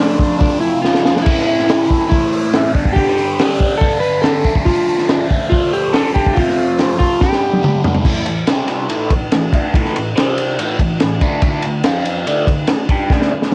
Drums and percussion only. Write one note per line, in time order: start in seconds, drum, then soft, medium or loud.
0.18 kick medium
0.18 open hi-hat medium
0.40 kick loud
0.40 open hi-hat medium
0.62 open hi-hat medium
0.85 snare medium
0.95 snare medium
1.06 snare loud
1.17 snare medium
1.26 kick loud
1.26 open hi-hat medium
1.26 crash loud
1.39 snare soft
1.48 open hi-hat medium
1.60 snare soft
1.69 snare loud
1.69 open hi-hat medium
1.91 kick medium
1.91 open hi-hat medium
2.12 kick loud
2.12 open hi-hat medium
2.33 open hi-hat medium
2.53 snare loud
2.53 open hi-hat medium
2.75 kick medium
2.75 open hi-hat medium
2.85 kick medium
2.96 kick loud
2.96 open hi-hat medium
3.08 snare soft
3.18 open hi-hat medium
3.39 snare loud
3.39 open hi-hat loud
3.60 kick medium
3.60 open hi-hat medium
3.81 kick loud
3.81 open hi-hat medium
4.03 open hi-hat medium
4.23 snare loud
4.23 open hi-hat medium
4.44 kick medium
4.44 open hi-hat medium
4.55 kick medium
4.66 kick loud
4.66 open hi-hat medium
4.88 open hi-hat medium
4.98 snare soft
5.09 snare loud
5.09 open hi-hat medium
5.30 kick medium
5.30 open hi-hat medium
5.52 kick loud
5.52 open hi-hat medium
5.73 open hi-hat medium
5.94 snare loud
5.94 open hi-hat medium
6.15 kick medium
6.15 open hi-hat medium
6.26 kick medium
6.36 kick loud
6.36 open hi-hat medium
6.49 snare soft
6.57 open hi-hat medium
6.79 snare loud
6.79 open hi-hat medium
7.00 kick medium
7.00 open hi-hat medium
7.21 kick loud
7.21 snare medium
7.32 snare medium
7.53 high tom medium
7.64 mid tom medium
7.84 floor tom loud
7.95 floor tom loud
8.05 kick loud
8.05 crash loud
8.26 ride medium
8.47 snare loud
8.47 ride loud
8.68 snare soft
8.68 ride medium
8.89 ride loud
9.10 kick medium
9.10 ride medium
9.32 snare loud
9.32 ride loud
9.53 kick loud
9.53 ride medium
9.74 kick loud
9.74 ride loud
9.85 snare soft
9.96 ride medium
10.17 snare loud
10.17 ride loud
10.38 ride medium
10.59 ride loud
10.79 kick medium
10.79 ride medium
11.00 snare loud
11.00 ride loud
11.21 kick medium
11.21 ride medium
11.42 kick loud
11.42 ride loud
11.62 ride medium
11.84 snare loud
11.84 ride loud
12.05 ride medium
12.27 ride loud
12.47 kick medium
12.47 ride medium
12.67 snare loud
12.67 ride loud
12.89 kick medium
12.89 ride medium
13.10 kick loud
13.10 snare medium
13.22 snare medium
13.42 snare medium